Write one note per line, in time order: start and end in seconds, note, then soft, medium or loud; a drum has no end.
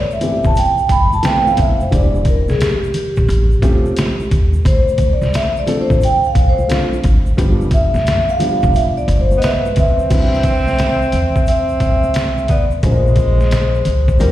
0.11 0.47 E5 medium
0.11 shaker soft
0.21 0.49 E3 medium
0.21 0.49 A3 medium
0.21 0.49 B3 medium
0.21 0.49 C4 medium
0.21 0.50 G4 medium
0.21 closed hi-hat medium
0.21 low conga medium
0.21 shaker soft
0.44 0.54 E1 medium
0.44 0.58 A5 medium
0.44 kick medium
0.44 shaker medium
0.55 0.92 G5 loud
0.55 closed hi-hat medium
0.55 shaker medium
0.78 shaker soft
0.89 1.17 G1 medium
0.89 1.01 B5 loud
0.89 kick medium
0.89 closed hi-hat medium
0.89 shaker medium
1.13 1.24 A5 loud
1.13 high conga medium
1.13 shaker soft
1.23 1.75 E3 medium
1.23 1.76 A3 medium
1.23 1.76 B3 medium
1.23 1.76 C4 medium
1.23 1.77 E4 medium
1.23 1.48 G5 loud
1.23 snare loud
1.23 closed hi-hat medium
1.23 shaker medium
1.47 1.53 F5 medium
1.47 high conga medium
1.47 shaker medium
1.57 1.85 F1 medium
1.57 1.82 E5 loud
1.57 kick medium
1.57 closed hi-hat medium
1.57 high conga soft
1.57 low conga medium
1.57 shaker soft
1.80 1.87 C5 medium
1.80 shaker soft
1.91 2.36 E1 loud
1.91 2.19 E3 medium
1.91 2.19 G3 medium
1.91 2.19 A#3 medium
1.91 2.20 D4 medium
1.91 2.20 G4 medium
1.91 2.28 D5 loud
1.91 kick loud
1.91 closed hi-hat medium
1.91 shaker medium
2.15 shaker soft
2.25 2.37 A#4 medium
2.25 kick medium
2.25 closed hi-hat medium
2.25 low conga medium
2.25 shaker soft
2.48 2.58 C2 medium
2.48 2.60 G#4 medium
2.48 snare soft
2.48 high conga medium
2.48 shaker medium
2.61 4.27 G4 medium
2.61 snare loud
2.61 closed hi-hat loud
2.61 shaker medium
2.84 shaker soft
2.94 closed hi-hat medium
2.94 low conga medium
2.94 shaker soft
3.16 3.27 A#1 medium
3.16 kick medium
3.16 shaker medium
3.28 3.55 A1 loud
3.28 closed hi-hat medium
3.28 shaker medium
3.51 shaker soft
3.62 3.89 C2 medium
3.62 4.05 F3 medium
3.62 4.06 A3 medium
3.62 4.06 C4 medium
3.62 4.06 C#4 medium
3.62 4.06 G4 medium
3.62 kick medium
3.62 closed hi-hat medium
3.62 shaker medium
3.86 high conga medium
3.86 shaker soft
3.96 snare loud
3.96 closed hi-hat medium
3.96 shaker medium
4.20 high conga medium
4.20 shaker soft
4.31 4.58 D#2 medium
4.31 kick medium
4.31 closed hi-hat medium
4.31 high conga soft
4.31 low conga medium
4.31 shaker soft
4.53 shaker medium
4.65 5.09 D2 loud
4.65 5.13 C5 loud
4.65 kick loud
4.65 closed hi-hat loud
4.65 shaker medium
4.89 shaker medium
4.98 kick medium
4.98 closed hi-hat medium
4.98 low conga medium
4.98 shaker soft
5.13 5.35 D5 medium
5.21 5.31 C2 medium
5.21 snare soft
5.21 high conga medium
5.21 shaker soft
5.34 5.45 E5 loud
5.34 snare loud
5.34 closed hi-hat loud
5.34 shaker medium
5.56 5.69 D5 medium
5.56 shaker soft
5.66 5.94 F3 medium
5.66 5.94 A3 medium
5.66 5.95 C4 medium
5.66 5.95 D4 medium
5.66 5.95 A4 medium
5.66 closed hi-hat medium
5.66 low conga medium
5.66 shaker soft
5.81 6.04 C5 loud
5.90 5.99 A1 medium
5.90 kick loud
5.90 shaker medium
6.01 6.24 G5 loud
6.01 closed hi-hat medium
6.01 shaker medium
6.23 6.49 F5 loud
6.23 shaker soft
6.35 6.62 C2 medium
6.35 kick medium
6.35 closed hi-hat medium
6.35 shaker medium
6.49 6.80 C5 medium
6.58 high conga medium
6.58 shaker soft
6.69 6.96 F3 medium
6.69 6.96 A3 medium
6.69 6.97 C4 medium
6.69 6.97 D4 medium
6.69 6.97 F4 medium
6.69 snare loud
6.69 closed hi-hat medium
6.69 shaker medium
6.93 high conga medium
6.93 shaker soft
7.04 7.31 G#1 medium
7.04 kick loud
7.04 closed hi-hat medium
7.04 high conga soft
7.04 low conga medium
7.04 shaker soft
7.26 shaker medium
7.37 7.82 G1 loud
7.37 7.65 F3 medium
7.37 7.65 G3 medium
7.37 7.65 B3 medium
7.37 7.65 D4 medium
7.37 7.66 G4 medium
7.37 kick loud
7.37 closed hi-hat loud
7.37 shaker medium
7.61 shaker soft
7.71 8.32 E5 loud
7.71 kick loud
7.71 closed hi-hat medium
7.71 low conga medium
7.71 shaker soft
7.94 8.03 F1 loud
7.94 snare soft
7.94 high conga medium
7.94 shaker soft
8.06 snare loud
8.06 closed hi-hat medium
8.06 shaker medium
8.29 8.76 F5 loud
8.29 shaker soft
8.39 9.37 F3 medium
8.39 9.38 G3 medium
8.39 9.38 B3 medium
8.39 9.38 D4 medium
8.39 9.38 G4 medium
8.39 closed hi-hat medium
8.39 low conga medium
8.39 shaker soft
8.63 8.72 E1 loud
8.63 kick loud
8.63 shaker medium
8.74 8.85 E5 loud
8.74 closed hi-hat medium
8.74 shaker medium
8.97 9.19 D5 loud
8.97 shaker soft
9.08 9.35 G1 loud
9.08 kick medium
9.08 closed hi-hat medium
9.08 shaker medium
9.21 9.44 C5 loud
9.31 high conga medium
9.31 shaker medium
9.37 9.42 B3 medium
9.37 9.43 D#5 medium
9.42 9.59 B3 medium
9.42 10.08 B4 medium
9.42 9.60 E5 loud
9.42 snare loud
9.42 closed hi-hat medium
9.42 shaker medium
9.65 high conga medium
9.65 shaker soft
9.76 10.04 C#2 medium
9.76 11.44 C4 loud
9.76 11.47 E5 loud
9.76 kick loud
9.76 closed hi-hat medium
9.76 high conga soft
9.76 low conga medium
9.76 shaker soft
9.99 shaker soft
10.10 11.09 C2 medium
10.10 10.37 G3 medium
10.10 10.38 C4 medium
10.10 10.38 D4 medium
10.10 10.38 E4 medium
10.10 10.38 B4 medium
10.10 kick loud
10.10 closed hi-hat medium
10.10 crash loud
10.10 shaker medium
10.34 high conga soft
10.34 shaker soft
10.43 kick medium
10.43 closed hi-hat medium
10.43 low conga medium
10.43 shaker soft
10.67 snare soft
10.67 high conga medium
10.67 shaker soft
10.79 snare medium
10.79 closed hi-hat medium
10.79 shaker medium
11.02 shaker soft
11.12 11.40 E2 medium
11.12 closed hi-hat medium
11.12 low conga medium
11.12 shaker soft
11.36 kick medium
11.36 shaker medium
11.46 12.46 C4 medium
11.46 12.53 E5 loud
11.46 closed hi-hat medium
11.46 shaker medium
11.69 shaker soft
11.80 12.79 C2 medium
11.80 kick medium
11.80 closed hi-hat medium
11.80 shaker soft
12.04 high conga medium
12.04 shaker soft
12.14 snare loud
12.14 closed hi-hat medium
12.14 shaker medium
12.38 high conga medium
12.38 shaker soft
12.48 12.65 B3 medium
12.48 12.66 D5 medium
12.48 kick medium
12.48 closed hi-hat medium
12.48 high conga soft
12.48 low conga medium
12.48 shaker soft
12.71 shaker soft
12.83 13.82 A#1 loud
12.83 13.35 G#3 medium
12.83 14.16 G#3 medium
12.83 13.35 A#3 medium
12.83 13.36 C#4 medium
12.83 13.36 F4 medium
12.83 12.93 G#4 medium
12.83 14.24 C5 loud
12.83 kick loud
12.83 closed hi-hat medium
12.83 shaker medium
12.91 13.39 A#4 medium
13.07 high conga soft
13.07 shaker soft
13.16 kick medium
13.16 closed hi-hat medium
13.16 low conga medium
13.16 shaker soft
13.40 snare soft
13.40 high conga medium
13.40 shaker soft
13.51 snare loud
13.51 closed hi-hat medium
13.51 shaker medium
13.75 shaker soft
13.85 14.13 C#2 medium
13.85 closed hi-hat medium
13.85 low conga medium
13.85 shaker soft
14.08 kick medium
14.08 shaker medium
14.19 14.32 D#2 loud
14.19 14.32 G3 medium
14.19 14.32 C#4 medium
14.19 14.32 D#4 medium
14.19 14.32 F4 medium
14.19 14.32 A#4 medium
14.19 closed hi-hat medium
14.19 shaker medium